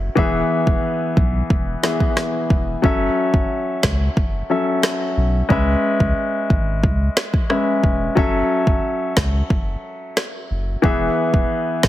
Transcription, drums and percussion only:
0, 0, Header, 1, 2, 480
1, 0, Start_track
1, 0, Key_signature, 3, "minor"
1, 0, Tempo, 666667
1, 122, Time_signature, 4, 2, 24, 8
1, 8556, End_track
2, 0, Start_track
2, 0, Title_t, "Drums"
2, 122, Note_on_c, 9, 36, 111
2, 194, Note_off_c, 9, 36, 0
2, 482, Note_on_c, 9, 36, 85
2, 554, Note_off_c, 9, 36, 0
2, 842, Note_on_c, 9, 36, 91
2, 914, Note_off_c, 9, 36, 0
2, 1082, Note_on_c, 9, 36, 89
2, 1154, Note_off_c, 9, 36, 0
2, 1321, Note_on_c, 9, 38, 95
2, 1325, Note_on_c, 9, 37, 76
2, 1393, Note_off_c, 9, 38, 0
2, 1397, Note_off_c, 9, 37, 0
2, 1443, Note_on_c, 9, 36, 93
2, 1515, Note_off_c, 9, 36, 0
2, 1561, Note_on_c, 9, 37, 93
2, 1561, Note_on_c, 9, 38, 71
2, 1633, Note_off_c, 9, 37, 0
2, 1633, Note_off_c, 9, 38, 0
2, 1802, Note_on_c, 9, 36, 84
2, 1874, Note_off_c, 9, 36, 0
2, 2042, Note_on_c, 9, 36, 114
2, 2114, Note_off_c, 9, 36, 0
2, 2402, Note_on_c, 9, 36, 84
2, 2474, Note_off_c, 9, 36, 0
2, 2759, Note_on_c, 9, 38, 111
2, 2762, Note_on_c, 9, 36, 86
2, 2763, Note_on_c, 9, 37, 87
2, 2831, Note_off_c, 9, 38, 0
2, 2834, Note_off_c, 9, 36, 0
2, 2835, Note_off_c, 9, 37, 0
2, 3002, Note_on_c, 9, 36, 91
2, 3074, Note_off_c, 9, 36, 0
2, 3480, Note_on_c, 9, 37, 101
2, 3480, Note_on_c, 9, 38, 120
2, 3484, Note_off_c, 9, 37, 0
2, 3484, Note_on_c, 9, 37, 95
2, 3552, Note_off_c, 9, 38, 0
2, 3556, Note_off_c, 9, 37, 0
2, 3961, Note_on_c, 9, 36, 110
2, 4033, Note_off_c, 9, 36, 0
2, 4322, Note_on_c, 9, 36, 84
2, 4394, Note_off_c, 9, 36, 0
2, 4681, Note_on_c, 9, 36, 84
2, 4753, Note_off_c, 9, 36, 0
2, 4921, Note_on_c, 9, 36, 90
2, 4993, Note_off_c, 9, 36, 0
2, 5161, Note_on_c, 9, 38, 99
2, 5165, Note_on_c, 9, 37, 78
2, 5233, Note_off_c, 9, 38, 0
2, 5237, Note_off_c, 9, 37, 0
2, 5282, Note_on_c, 9, 36, 93
2, 5354, Note_off_c, 9, 36, 0
2, 5400, Note_on_c, 9, 37, 96
2, 5472, Note_off_c, 9, 37, 0
2, 5641, Note_on_c, 9, 36, 84
2, 5713, Note_off_c, 9, 36, 0
2, 5882, Note_on_c, 9, 36, 115
2, 5954, Note_off_c, 9, 36, 0
2, 6242, Note_on_c, 9, 36, 84
2, 6314, Note_off_c, 9, 36, 0
2, 6600, Note_on_c, 9, 38, 109
2, 6602, Note_on_c, 9, 36, 86
2, 6604, Note_on_c, 9, 37, 85
2, 6672, Note_off_c, 9, 38, 0
2, 6674, Note_off_c, 9, 36, 0
2, 6676, Note_off_c, 9, 37, 0
2, 6842, Note_on_c, 9, 36, 87
2, 6914, Note_off_c, 9, 36, 0
2, 7322, Note_on_c, 9, 37, 98
2, 7322, Note_on_c, 9, 38, 114
2, 7326, Note_off_c, 9, 37, 0
2, 7326, Note_on_c, 9, 37, 95
2, 7394, Note_off_c, 9, 38, 0
2, 7398, Note_off_c, 9, 37, 0
2, 7802, Note_on_c, 9, 36, 115
2, 7874, Note_off_c, 9, 36, 0
2, 8162, Note_on_c, 9, 36, 85
2, 8234, Note_off_c, 9, 36, 0
2, 8520, Note_on_c, 9, 38, 110
2, 8522, Note_on_c, 9, 36, 88
2, 8524, Note_on_c, 9, 37, 91
2, 8556, Note_off_c, 9, 36, 0
2, 8556, Note_off_c, 9, 37, 0
2, 8556, Note_off_c, 9, 38, 0
2, 8556, End_track
0, 0, End_of_file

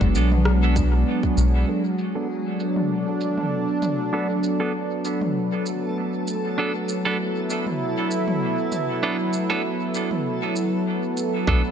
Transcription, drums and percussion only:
0, 0, Header, 1, 2, 480
1, 0, Start_track
1, 0, Tempo, 612245
1, 1319, Time_signature, 4, 2, 24, 8
1, 9182, End_track
2, 0, Start_track
2, 0, Title_t, "Drums"
2, 7, Note_on_c, 9, 36, 91
2, 86, Note_off_c, 9, 36, 0
2, 118, Note_on_c, 9, 82, 51
2, 196, Note_off_c, 9, 82, 0
2, 248, Note_on_c, 9, 45, 81
2, 327, Note_off_c, 9, 45, 0
2, 356, Note_on_c, 9, 37, 85
2, 434, Note_off_c, 9, 37, 0
2, 596, Note_on_c, 9, 36, 97
2, 597, Note_on_c, 9, 82, 51
2, 675, Note_off_c, 9, 36, 0
2, 676, Note_off_c, 9, 82, 0
2, 967, Note_on_c, 9, 36, 54
2, 1045, Note_off_c, 9, 36, 0
2, 1078, Note_on_c, 9, 82, 49
2, 1157, Note_off_c, 9, 82, 0
2, 1556, Note_on_c, 9, 82, 44
2, 1634, Note_off_c, 9, 82, 0
2, 2036, Note_on_c, 9, 82, 44
2, 2114, Note_off_c, 9, 82, 0
2, 2166, Note_on_c, 9, 45, 69
2, 2244, Note_off_c, 9, 45, 0
2, 2515, Note_on_c, 9, 82, 46
2, 2593, Note_off_c, 9, 82, 0
2, 2646, Note_on_c, 9, 45, 68
2, 2725, Note_off_c, 9, 45, 0
2, 2997, Note_on_c, 9, 45, 71
2, 2997, Note_on_c, 9, 82, 45
2, 3075, Note_off_c, 9, 45, 0
2, 3075, Note_off_c, 9, 82, 0
2, 3477, Note_on_c, 9, 82, 46
2, 3555, Note_off_c, 9, 82, 0
2, 3957, Note_on_c, 9, 82, 48
2, 4035, Note_off_c, 9, 82, 0
2, 4088, Note_on_c, 9, 45, 69
2, 4166, Note_off_c, 9, 45, 0
2, 4438, Note_on_c, 9, 82, 47
2, 4516, Note_off_c, 9, 82, 0
2, 4920, Note_on_c, 9, 82, 47
2, 4998, Note_off_c, 9, 82, 0
2, 5399, Note_on_c, 9, 82, 47
2, 5477, Note_off_c, 9, 82, 0
2, 5879, Note_on_c, 9, 82, 46
2, 5957, Note_off_c, 9, 82, 0
2, 6010, Note_on_c, 9, 45, 67
2, 6088, Note_off_c, 9, 45, 0
2, 6358, Note_on_c, 9, 82, 49
2, 6437, Note_off_c, 9, 82, 0
2, 6489, Note_on_c, 9, 45, 68
2, 6567, Note_off_c, 9, 45, 0
2, 6837, Note_on_c, 9, 45, 65
2, 6837, Note_on_c, 9, 82, 45
2, 6915, Note_off_c, 9, 45, 0
2, 6915, Note_off_c, 9, 82, 0
2, 7315, Note_on_c, 9, 82, 45
2, 7394, Note_off_c, 9, 82, 0
2, 7796, Note_on_c, 9, 82, 44
2, 7875, Note_off_c, 9, 82, 0
2, 7927, Note_on_c, 9, 45, 68
2, 8005, Note_off_c, 9, 45, 0
2, 8278, Note_on_c, 9, 82, 48
2, 8356, Note_off_c, 9, 82, 0
2, 8759, Note_on_c, 9, 82, 45
2, 8837, Note_off_c, 9, 82, 0
2, 8996, Note_on_c, 9, 36, 116
2, 9074, Note_off_c, 9, 36, 0
2, 9182, End_track
0, 0, End_of_file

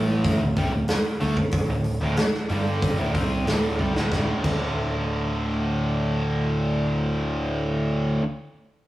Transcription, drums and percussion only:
0, 0, Header, 1, 2, 480
1, 0, Start_track
1, 0, Tempo, 647249
1, 1135, Time_signature, 4, 2, 24, 8
1, 6582, End_track
2, 0, Start_track
2, 0, Title_t, "Drums"
2, 178, Note_on_c, 9, 46, 61
2, 182, Note_on_c, 9, 36, 107
2, 252, Note_off_c, 9, 46, 0
2, 256, Note_off_c, 9, 36, 0
2, 416, Note_on_c, 9, 46, 45
2, 421, Note_on_c, 9, 36, 80
2, 491, Note_off_c, 9, 46, 0
2, 495, Note_off_c, 9, 36, 0
2, 651, Note_on_c, 9, 46, 63
2, 659, Note_on_c, 9, 38, 91
2, 725, Note_off_c, 9, 46, 0
2, 733, Note_off_c, 9, 38, 0
2, 892, Note_on_c, 9, 46, 46
2, 967, Note_off_c, 9, 46, 0
2, 1015, Note_on_c, 9, 36, 83
2, 1089, Note_off_c, 9, 36, 0
2, 1122, Note_on_c, 9, 46, 68
2, 1133, Note_on_c, 9, 36, 111
2, 1196, Note_off_c, 9, 46, 0
2, 1207, Note_off_c, 9, 36, 0
2, 1365, Note_on_c, 9, 46, 47
2, 1439, Note_off_c, 9, 46, 0
2, 1605, Note_on_c, 9, 46, 58
2, 1613, Note_on_c, 9, 38, 104
2, 1679, Note_off_c, 9, 46, 0
2, 1688, Note_off_c, 9, 38, 0
2, 1738, Note_on_c, 9, 38, 29
2, 1812, Note_off_c, 9, 38, 0
2, 1849, Note_on_c, 9, 46, 42
2, 1923, Note_off_c, 9, 46, 0
2, 2094, Note_on_c, 9, 36, 99
2, 2094, Note_on_c, 9, 46, 60
2, 2168, Note_off_c, 9, 46, 0
2, 2169, Note_off_c, 9, 36, 0
2, 2333, Note_on_c, 9, 46, 49
2, 2334, Note_on_c, 9, 36, 75
2, 2408, Note_off_c, 9, 46, 0
2, 2409, Note_off_c, 9, 36, 0
2, 2573, Note_on_c, 9, 46, 59
2, 2581, Note_on_c, 9, 38, 94
2, 2647, Note_off_c, 9, 46, 0
2, 2656, Note_off_c, 9, 38, 0
2, 2811, Note_on_c, 9, 36, 50
2, 2886, Note_off_c, 9, 36, 0
2, 2939, Note_on_c, 9, 38, 72
2, 3013, Note_off_c, 9, 38, 0
2, 3053, Note_on_c, 9, 36, 99
2, 3057, Note_on_c, 9, 38, 71
2, 3127, Note_off_c, 9, 36, 0
2, 3132, Note_off_c, 9, 38, 0
2, 3294, Note_on_c, 9, 49, 73
2, 3295, Note_on_c, 9, 36, 99
2, 3368, Note_off_c, 9, 49, 0
2, 3369, Note_off_c, 9, 36, 0
2, 6582, End_track
0, 0, End_of_file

